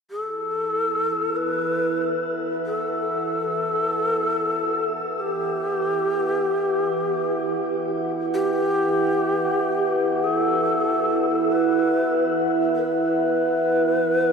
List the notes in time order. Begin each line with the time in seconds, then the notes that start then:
0.11 E4 A4
0.40 B4
1.04 E5
1.36 B4
1.90 F#5
2.66 A4
5.19 G4
8.34 G4
10.24 A4
11.51 B4
12.75 B4